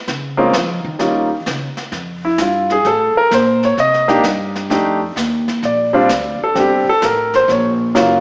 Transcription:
0.08 upright bass C#3, brush sweep, snare
0.37 grand piano G#3 A#3 C4 C#4 F4
0.53 upright bass F3, snare
0.84 upright bass D#3
0.99 grand piano G3 A#3 C#4 D#4 F4, brush sweep, snare
1.46 upright bass C#3, snare
1.77 snare
1.92 upright bass F2, brush sweep, kick, snare
2.25 grand piano E4
2.38 upright bass G2, grand piano F4, kick, snare, hi-hat pedal
2.70 grand piano G#4, snare
2.84 upright bass A2, grand piano A4, brush sweep, kick, snare
3.15 grand piano A#4, muted upright bass stroke
3.31 upright bass A#2, grand piano C5, kick, snare, hi-hat pedal
3.63 grand piano C#5, snare
3.77 upright bass C3, grand piano D#5, brush sweep, kick, snare
3.93 snare
4.08 grand piano A#3 D4 D#4 G4, snare
4.23 upright bass G2, kick, snare, hi-hat pedal
4.55 snare
4.70 upright bass F2, grand piano A3 D4 D#4 G4, brush sweep, kick, snare
5.16 upright bass D#2, kick, snare, hi-hat pedal
5.48 snare
5.63 upright bass A#1, grand piano D5, brush sweep, kick, snare
5.93 grand piano G3 C4 D4 F4
6.09 upright bass D2, kick, snare, hi-hat pedal
6.40 grand piano A4, muted upright bass stroke
6.54 upright bass G1, grand piano G3 C4 D4 G4, brush sweep, kick, snare
6.60 grand piano G4
6.87 grand piano A4, muted upright bass stroke
7.02 upright bass A1, grand piano A#4, kick, snare, hi-hat pedal
7.33 grand piano C5, snare
7.48 upright bass A#1, grand piano C#5, brush sweep, kick, snare
7.95 upright bass F#1, grand piano F#3 A#3 C#4 F4, kick, snare, hi-hat pedal

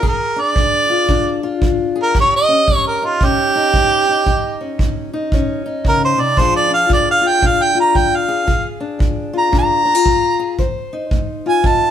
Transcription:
0.02 steel-string acoustic guitar A#2 G#4, kick
0.08 harmonica A#4
0.36 steel-string acoustic guitar D4
0.42 harmonica D5
0.55 steel-string acoustic guitar F3, kick
0.90 steel-string acoustic guitar F4
1.09 steel-string acoustic guitar A#2 D4, kick
1.43 steel-string acoustic guitar F4
1.62 steel-string acoustic guitar F3, kick
1.96 steel-string acoustic guitar G#4
2.03 harmonica A#4
2.15 steel-string acoustic guitar D#3 G4, kick
2.20 harmonica C#5
2.36 harmonica D#5
2.48 steel-string acoustic guitar C#4
2.68 steel-string acoustic guitar G3, kick
2.87 harmonica A#4
3.02 steel-string acoustic guitar D#4, harmonica F4
3.21 steel-string acoustic guitar A#2 C#4, harmonica G4, kick
3.55 steel-string acoustic guitar D#4
3.74 steel-string acoustic guitar G3, kick
4.09 steel-string acoustic guitar D#4
4.26 steel-string acoustic guitar D#3 D#4, kick
4.61 steel-string acoustic guitar C#4
4.79 steel-string acoustic guitar G3, kick
5.13 steel-string acoustic guitar D#4
5.32 steel-string acoustic guitar A#2 C#4, kick
5.66 steel-string acoustic guitar D#4
5.84 steel-string acoustic guitar C#3, kick
5.88 harmonica A#4
6.04 harmonica C5
6.18 steel-string acoustic guitar C3, harmonica D5
6.36 steel-string acoustic guitar A#2 F3 D4 F4 G#4, harmonica C5, kick
6.56 harmonica D5
6.70 steel-string acoustic guitar D4, harmonica F5
6.89 steel-string acoustic guitar F3, harmonica D5, kick
7.11 harmonica F5
7.21 steel-string acoustic guitar F4
7.28 harmonica G5
7.41 steel-string acoustic guitar A#2 D4, kick
7.46 harmonica F5
7.62 harmonica G5
7.75 steel-string acoustic guitar F4
7.80 harmonica A#5
7.95 steel-string acoustic guitar F3, harmonica G5, kick
8.16 harmonica F5
8.28 steel-string acoustic guitar G#4
8.47 steel-string acoustic guitar A#2 G#4, kick
8.80 steel-string acoustic guitar D4
8.99 steel-string acoustic guitar F3, kick
9.33 steel-string acoustic guitar F4
9.38 harmonica A#5
9.52 steel-string acoustic guitar A#2 D4, kick
9.59 harmonica A#5
9.85 steel-string acoustic guitar D4
9.95 steel-string acoustic guitar F4
10.05 steel-string acoustic guitar F3, kick
10.39 steel-string acoustic guitar G#4
10.58 steel-string acoustic guitar F3 C5, kick
10.93 steel-string acoustic guitar D#4
11.11 steel-string acoustic guitar A3, kick
11.46 steel-string acoustic guitar F4, harmonica G#5
11.63 steel-string acoustic guitar C3 D#4, harmonica A5, kick

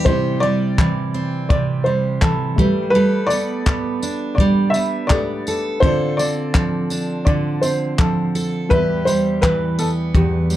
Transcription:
Already playing: steel-string acoustic guitar E2 E3 G3 B3
0.05 steel-string acoustic guitar C3 G4, felt piano G3 E4 C5, upright piano C5, kick
0.40 steel-string acoustic guitar G3, upright piano D5
0.78 steel-string acoustic guitar E3, kick, clap
1.14 steel-string acoustic guitar C4
1.49 steel-string acoustic guitar C3, upright piano D5, kick
1.84 steel-string acoustic guitar G3, upright piano C5
2.21 steel-string acoustic guitar E3, upright piano A4, kick, clap
2.56 steel-string acoustic guitar G3, felt piano A3 G4 B4, kick
2.90 upright piano B4
2.95 steel-string acoustic guitar G3 A4
3.27 upright piano D5, tambourine
3.31 steel-string acoustic guitar B3
3.66 steel-string acoustic guitar B3, kick, clap
4.03 steel-string acoustic guitar D4, tambourine
4.35 upright piano D5, kick
4.40 steel-string acoustic guitar G3
4.70 upright piano E5, tambourine
4.75 steel-string acoustic guitar B3
5.07 felt piano A3 G4, upright piano D5, kick, clap
5.11 steel-string acoustic guitar B3, felt piano A4
5.47 steel-string acoustic guitar A4, tambourine
5.80 steel-string acoustic guitar D3 A4, felt piano C4 F4, upright piano C5, kick
5.85 felt piano D5
6.17 steel-string acoustic guitar C4, upright piano D5, tambourine
6.55 steel-string acoustic guitar F3, kick, clap
6.90 steel-string acoustic guitar D4, tambourine
7.25 steel-string acoustic guitar D3, upright piano D5, kick
7.61 steel-string acoustic guitar C4, upright piano C5, tambourine
7.98 steel-string acoustic guitar F3, upright piano A4, kick, clap
8.35 steel-string acoustic guitar A4, tambourine
8.69 steel-string acoustic guitar E2 G4, felt piano G3 G4, upright piano B4, kick
8.73 felt piano E5
9.05 steel-string acoustic guitar G3, upright piano C5, tambourine
9.42 steel-string acoustic guitar E3, upright piano B4, kick, clap
9.79 steel-string acoustic guitar B3, upright piano A4, tambourine
10.15 steel-string acoustic guitar E2, upright piano G4, kick
10.50 steel-string acoustic guitar G3, tambourine

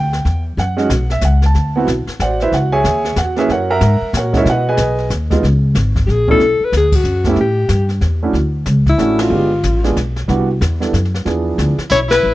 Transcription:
Already playing: upright bass D2, grand piano G5
0.13 snare
0.25 upright bass E2, kick, snare
0.57 upright bass F#2, grand piano F#5, brush sweep, kick, snare
0.77 grand piano G#3 C#4 D#4 F#4, snare
0.90 upright bass B1, kick, snare, hi-hat pedal
1.10 grand piano E5, snare
1.21 upright bass C#2, grand piano F#5, kick, snare, hi-hat pedal
1.42 grand piano A5, snare
1.54 upright bass D2, brush sweep, kick, snare
1.76 grand piano B3 C4 E4 F#4
1.87 upright bass B1, kick, snare, hi-hat pedal
2.07 muted upright bass stroke, snare
2.19 upright bass A1, grand piano F#4 C5 D5 F#5, kick, snare, hi-hat pedal
2.40 grand piano E4 B4 C5 E5, snare
2.52 upright bass C#2, grand piano F#4 F#5, brush sweep, kick, snare
2.72 grand piano G#4 C#5 E5 G#5
2.84 upright bass D#2, kick, snare, hi-hat pedal
3.05 snare
3.16 upright bass E2, grand piano F#4 F#5, kick, snare, hi-hat pedal
3.36 grand piano A#3 C#4 E4 G#4 B4 C#5 E5, snare
3.49 upright bass F#2, grand piano A#4 C#5 F#5, brush sweep, kick, snare
3.53 grand piano F#4
3.70 grand piano A#4 E5 F#5 A#5
3.81 upright bass G#2, kick, snare, hi-hat pedal
4.01 muted upright bass stroke
4.13 upright bass A#2, grand piano F#4 A#4 F#5, kick, snare, hi-hat pedal
4.18 grand piano C#5
4.33 grand piano G#3 C#4 D#4 F#4, kick, snare
4.37 grand piano E4 A#4 C#5 E5
4.45 upright bass B2, brush sweep, kick, snare
4.49 grand piano F#4 B4 D#5 F#5
4.69 grand piano G#4 B4 D#5 G#5
4.77 upright bass B1, kick, snare, hi-hat pedal
4.98 snare
5.10 upright bass D#2, kick, snare, hi-hat pedal
5.30 grand piano G#3 B3 D#4 F4, kick, snare
5.43 upright bass C#2, brush sweep, snare
5.75 upright bass G#1, kick, snare, hi-hat pedal
5.95 kick, snare
6.07 upright bass A#1, alto saxophone G4, kick, snare
6.11 alto saxophone G#4
6.28 grand piano B2 A3 C#4 D4 E4, alto saxophone A4, kick
6.40 upright bass B1, brush sweep, kick, snare
6.60 muted upright bass stroke
6.65 alto saxophone B4
6.72 upright bass D2, kick, snare, hi-hat pedal
6.77 alto saxophone G#4
6.92 alto saxophone F#4, kick, crash
7.04 upright bass F#2, hi-hat pedal
7.24 grand piano A3 B3 C#4 E4 G4, kick, snare
7.30 alto saxophone E4
7.36 upright bass A2, brush sweep, kick, snare
7.41 alto saxophone G4
7.69 upright bass G2, kick, snare, hi-hat pedal
7.89 snare
8.01 upright bass E2, kick, snare
8.23 grand piano A3 C#4 D4 E4 F#4
8.33 upright bass D2, brush sweep, kick, snare
8.66 upright bass C#2, kick, snare, hi-hat pedal
8.86 alto saxophone E4, kick, snare
8.98 upright bass A1, grand piano A3 C#4 D4 E4 F#4, snare, hi-hat pedal
9.19 alto saxophone F4, snare, ride
9.30 upright bass G1, grand piano G#3 B3 D4 F4 G4, brush sweep
9.63 upright bass A1, kick, snare, hi-hat pedal
9.83 grand piano G#3 B3 D4 F4 G#4, snare
9.96 upright bass B1, kick, snare, hi-hat pedal
10.16 snare
10.28 upright bass C2, grand piano G3 B3 D4 E4 F#4, brush sweep, kick, snare
10.61 upright bass E2, kick, snare, hi-hat pedal
10.80 grand piano G3 B3 D4 E4 A4, snare
10.93 upright bass F#2, kick, snare, hi-hat pedal
11.05 snare
11.15 snare
11.25 upright bass E2, grand piano F3 B3 D4 E4 G#4, brush sweep, kick, snare
11.58 upright bass D2, kick, snare, hi-hat pedal
11.78 muted upright bass stroke, snare
11.90 upright bass B1, trumpet E4, alto saxophone C#5, kick, snare, hi-hat pedal
12.08 trumpet E4, alto saxophone B4, snare, ride
12.23 upright bass A1, brush sweep

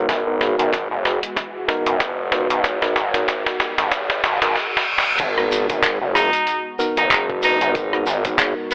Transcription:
Already playing: analog synth pad B2 G#3 F#4, tine electric piano B3 D#4 F#4 A#4, riser
0.09 analog synth bass G#1, kick, snare, closed hi-hat
0.27 tine electric piano B3 D#4 F#4 A#4
0.41 snare
0.58 analog synth bass G#1, tine electric piano B3 D#4 F#4 A#4, closed hi-hat
0.73 kick, snare, closed hi-hat
0.91 analog synth bass F#1
1.05 snare
1.23 closed hi-hat
1.36 kick, snare, closed hi-hat
1.68 tine electric piano B3 D#4 F#4 A#4, snare
1.86 analog synth bass F#1, closed hi-hat
2.00 kick, snare, closed hi-hat
2.32 tine electric piano B3 D#4 F#4 B4, snare
2.50 analog synth bass G#1, closed hi-hat
2.64 kick, snare, closed hi-hat
2.82 tine electric piano B3 D#4 F#4 A#4, snare
2.96 analog synth bass G#1, snare
3.14 tine electric piano B3 D#4 F#4 A#4, snare, closed hi-hat
3.28 kick, snare, closed hi-hat
3.46 snare
3.60 snare
3.78 analog synth bass G#1, snare, closed hi-hat
3.92 kick, snare, closed hi-hat, reverse cymbal
4.10 snare
4.24 analog synth bass G#1, snare
4.42 analog synth bass G#1, tine electric piano B3 D#4 F#4 A#4, snare, closed hi-hat
4.56 snare
4.77 snare
4.98 snare
5.20 analog synth bass G#1, analog synth pad B2 G#3 F#4, kick, closed hi-hat, crash, shekere
5.38 tine electric piano B3 D#4 F#4 A#4, cross-stick
5.52 shekere
5.70 analog synth bass G#1, tine electric piano B3 D#4 F#4 A#4, kick, closed hi-hat, shekere
5.83 clap, closed hi-hat, shekere
6.01 analog synth bass F#1
6.15 tenor saxophone D#4, cross-stick, open hi-hat, shekere
6.33 closed hi-hat, shekere
6.47 closed hi-hat, shekere
6.79 tine electric piano B3 D#4 F#4 A#4, shekere
6.97 analog synth bass F#1, tenor saxophone D#4, kick, closed hi-hat, shekere
7.11 tenor saxophone D#4, clap, closed hi-hat, shekere
7.30 kick
7.43 tine electric piano B3 D#4 F#4 B4, tenor saxophone D#4, open hi-hat, shekere
7.61 analog synth bass G#1, closed hi-hat, shekere
7.75 kick, closed hi-hat, shekere
7.93 tine electric piano B3 D#4 F#4 A#4, cross-stick
8.06 analog synth bass G#1, shekere
8.25 tine electric piano B3 D#4 F#4 A#4, kick, closed hi-hat, shekere
8.38 clap, closed hi-hat, shekere
8.71 open hi-hat

